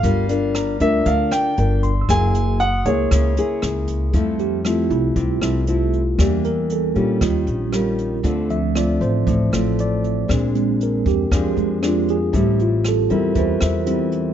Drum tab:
HH |xxxxxxxx|xxxxxxxx|xxxxxxxx|xxxxxxxx|
SD |--r--r--|r---r-r-|--r--r--|r---r-r-|
BD |o--oo--o|o--oo--o|o---o---|o---o---|

HH |xxxxxxxx|xxxxxxxx|xxxxxxxx|
SD |--r--r--|r---r-r-|--r--r--|
BD |o---o---|o--oo---|o---o---|